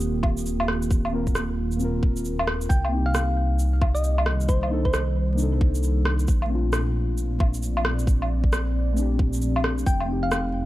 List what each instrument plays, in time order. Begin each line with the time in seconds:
Already playing: detuned saw bass D#1, ambient pad D#3 A#3 F4 G4, synth keys A#3 C4 F4 G4
0.00 shaker
0.23 kick, low woodblock
0.37 shaker
0.46 shaker
0.60 low woodblock
0.68 cross-stick
0.82 shaker
0.91 kick, shaker
1.05 low woodblock
1.11 synth keys A#3 C4 F4 A#4
1.27 kick, shaker
1.35 cross-stick, shaker
1.72 shaker
1.76 synth keys A#3 C4, shaker
1.81 synth keys F4 A#4
2.03 kick
2.16 shaker
2.25 shaker
2.39 low woodblock
2.47 cross-stick
2.61 shaker
2.69 detuned saw bass C2, ambient pad C3, synth pluck G5, kick, shaker
2.85 synth keys A#3, low woodblock
2.91 synth keys C4 D#4
2.96 synth keys G4
3.06 synth pluck F5
3.15 ambient pad G3, cross-stick, shaker
3.50 ambient pad D#3
3.59 shaker
3.81 kick, low woodblock
3.95 synth pluck D#5, shaker
4.04 shaker
4.18 low woodblock
4.26 cross-stick
4.41 shaker
4.49 synth pluck C5, kick, shaker
4.63 low woodblock
4.69 synth keys A#3 D4 D#4 A4
4.85 synth pluck C5, kick
4.94 cross-stick, shaker
5.34 synth keys A#3 D4
5.38 synth keys D#4 A4, shaker
5.61 kick
5.75 shaker
5.83 shaker
6.05 cross-stick
6.19 shaker
6.28 detuned saw bass A#1, ambient pad A#2, kick, shaker
6.39 ambient pad F3, low woodblock
6.46 synth keys A3 C4
6.52 synth keys D4 F4
6.57 ambient pad C4
6.73 cross-stick, shaker
7.18 ambient pad D5, shaker
7.40 kick, low woodblock
7.54 shaker
7.63 shaker
7.77 low woodblock
7.85 cross-stick
7.99 shaker
8.07 kick, shaker
8.22 low woodblock
8.44 kick
8.53 cross-stick, shaker
8.93 synth keys A3 C4
8.97 synth keys D4 G4, shaker
9.19 kick
9.33 shaker
9.42 shaker
9.56 low woodblock
9.64 cross-stick
9.78 shaker
9.86 detuned saw bass F1, synth pluck G5, kick, shaker
10.00 low woodblock
10.05 synth keys A3 C4
10.10 synth keys D#4 G4
10.23 synth pluck F5
10.31 ambient pad G4, cross-stick, shaker